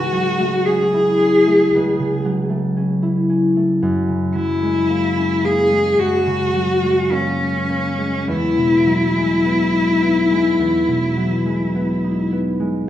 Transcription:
0.00 1.73 C#2 medium
0.00 1.98 C#3 soft
0.00 3.23 G#3 soft
0.00 0.93 E4 soft
0.00 0.67 F#4 medium
0.12 2.24 F#3 soft
0.39 1.46 A3 soft
0.65 1.20 C#4 soft
0.65 2.24 G#4 medium
0.94 3.01 E4 soft
1.21 2.76 C#4 soft
1.47 2.48 A3 soft
1.74 3.88 C#2 soft
1.99 3.87 C#3 soft
2.25 4.34 F#3 soft
2.50 3.55 A3 soft
2.77 3.28 C#4 soft
3.02 6.92 E4 soft
3.29 5.16 C#4 soft
3.56 3.87 A3 soft
3.82 5.98 F#2 medium
4.08 6.25 C#3 soft
4.35 6.53 F#3 soft
4.35 5.46 E4 medium
4.63 5.70 G#3 soft
4.89 5.42 A#3 soft
5.17 7.38 C#4 soft
5.44 7.10 A#3 soft
5.44 6.01 G#4 medium
5.71 6.81 G#3 soft
5.99 8.33 F#2 soft
5.99 7.13 F#4 medium
6.26 8.33 C#3 soft
6.54 8.85 F#3 soft
6.83 7.97 G#3 soft
7.11 7.68 A#3 soft
7.11 8.29 C#4 medium
7.40 8.32 C#4 soft
7.69 8.33 A#3 soft
7.98 9.15 G#3 soft
8.27 10.58 E2 medium
8.27 12.31 E4 medium
8.57 10.87 B2 soft
8.86 11.16 F#3 soft
9.16 10.30 G#3 soft
9.45 10.01 B3 soft
9.73 12.03 D#4 soft
10.02 11.74 B3 soft
10.31 11.44 G#3 soft
10.59 12.87 E2 soft
10.88 12.89 B2 soft
11.17 12.89 F#3 soft
11.46 12.59 G#3 soft
11.75 12.31 B3 soft
12.04 12.89 D#4 soft
12.32 12.89 B3 soft
12.60 12.89 G#3 soft

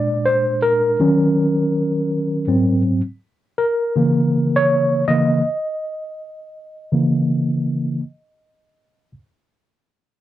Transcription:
0.00 0.95 A#2 medium
0.00 0.96 G#3 soft
0.00 0.96 D4 medium
0.00 0.28 D5 medium
0.26 0.60 C5 medium
0.62 2.81 A#4 medium
1.00 2.44 D#3 medium
1.00 2.44 F#3 soft
1.00 2.44 C#4 medium
2.47 3.00 G#2 soft
2.47 3.00 F#3 soft
2.47 3.01 C4 medium
3.58 4.58 A#4 medium
3.96 5.03 C#3 medium
3.96 5.03 E3 soft
3.96 5.04 A#3 medium
4.56 5.04 C#5 medium
5.08 5.41 C#3 soft
5.08 5.41 E3 soft
5.08 5.41 A#3 medium
5.08 9.11 D#5 loud
6.92 7.99 C#3 medium
6.92 8.00 E3 soft
6.92 8.00 A#3 medium

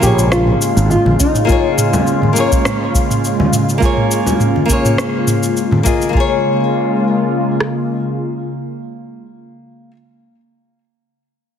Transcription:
0.00 0.54 A#1 medium
0.00 6.11 C#3 medium
0.00 6.11 G#3 medium
0.00 1.43 A#3 medium
0.00 1.45 A#3 medium
0.00 6.11 F4 medium
0.00 1.44 F4 medium
0.00 0.31 G4 medium
0.00 1.46 G#4 medium
0.00 kick medium
0.00 mid tom medium
0.00 cabasa medium
0.06 1.47 C#5 medium
0.19 cabasa soft
0.32 0.90 F4 medium
0.32 cross-stick medium
0.32 cabasa soft
0.47 mid tom medium
0.62 cabasa medium
0.77 0.95 G#1 loud
0.77 cabasa soft
0.90 1.20 F4 medium
0.90 mid tom medium
0.90 cabasa soft
1.06 1.15 A#1 medium
1.06 high conga medium
1.20 1.89 D#4 medium
1.20 kick loud
1.20 cabasa medium
1.35 mid tom medium
1.35 cabasa soft
1.45 2.31 A#3 medium
1.45 2.32 F4 medium
1.49 2.33 G#4 medium
1.49 2.34 C#5 medium
1.49 kick loud
1.49 cabasa soft
1.78 mid tom medium
1.78 cabasa medium
1.93 low conga medium
1.93 cabasa soft
2.07 cabasa soft
2.22 mid tom medium
2.22 high conga medium
2.33 3.77 A#3 medium
2.33 3.78 F4 medium
2.33 cabasa medium
2.38 3.79 G#4 medium
2.38 3.80 C#5 medium
2.52 kick medium
2.52 cabasa soft
2.65 cross-stick medium
2.65 mid tom medium
2.65 cabasa soft
2.95 kick loud
2.95 cabasa medium
3.10 mid tom medium
3.10 cabasa soft
3.24 cabasa soft
3.40 high conga medium
3.40 low conga medium
3.53 mid tom medium
3.53 cabasa medium
3.69 cabasa soft
3.78 4.64 A#3 medium
3.78 4.65 F4 medium
3.82 4.66 G#4 medium
3.82 4.67 C#5 medium
3.82 kick loud
3.82 cabasa soft
3.97 mid tom medium
4.11 cabasa medium
4.26 low conga medium
4.26 cabasa soft
4.40 mid tom medium
4.40 cabasa soft
4.56 high conga medium
4.66 5.81 A#3 medium
4.66 5.82 F4 medium
4.66 kick medium
4.70 5.83 G#4 medium
4.70 5.84 C#5 medium
4.70 cabasa medium
4.85 mid tom medium
4.85 cabasa soft
4.98 cross-stick medium
4.98 cabasa soft
5.27 mid tom medium
5.27 cabasa medium
5.43 cabasa soft
5.57 cabasa soft
5.71 mid tom medium
5.71 high conga medium
5.83 6.08 A#3 medium
5.83 6.11 F4 medium
5.83 6.11 G#4 medium
5.83 6.12 D#5 medium
5.83 kick medium
5.83 cabasa medium
6.02 cabasa soft
6.09 9.91 A#3 medium
6.09 9.93 F4 medium
6.15 9.24 C#3 medium
6.15 9.24 G#3 medium
6.15 9.23 A#3 medium
6.15 9.24 F4 medium
6.15 9.94 G#4 medium
6.15 kick loud
6.20 9.96 C#5 medium
7.60 cross-stick medium

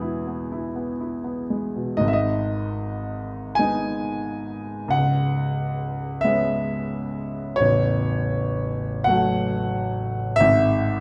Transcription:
0.00 1.96 E2 medium
0.00 1.76 B2 soft
0.00 1.50 G#3 soft
0.00 0.17 B3 soft
0.00 0.41 E4 soft
0.00 0.49 G#4 medium
0.28 0.67 B3 soft
0.52 0.91 E4 soft
0.76 1.16 B3 soft
1.01 1.41 E4 soft
1.24 1.66 B3 soft
1.50 1.91 G#3 soft
1.76 2.02 B2 soft
1.97 4.90 G#1 medium
1.97 4.88 G#2 medium
1.97 2.07 D#5 medium
2.08 2.17 E5 medium
2.13 3.57 D#5 medium
3.55 4.90 G#3 soft
3.55 4.93 G#5 medium
3.60 4.91 B3 soft
3.60 4.91 D#4 soft
4.88 7.53 C#1 medium
4.88 7.52 C#2 medium
4.88 6.23 F#5 medium
6.21 7.55 G#3 soft
6.21 7.55 B3 medium
6.21 7.57 E5 medium
6.25 7.55 C#4 medium
7.56 10.36 A0 medium
7.56 10.36 A1 medium
7.56 9.05 C#5 medium
9.04 10.36 F#3 medium
9.04 10.37 A3 medium
9.04 10.39 F#5 loud
9.09 10.37 F#4 medium
10.36 11.00 G#2 medium
10.36 11.00 E5 loud
10.40 11.00 G#1 medium

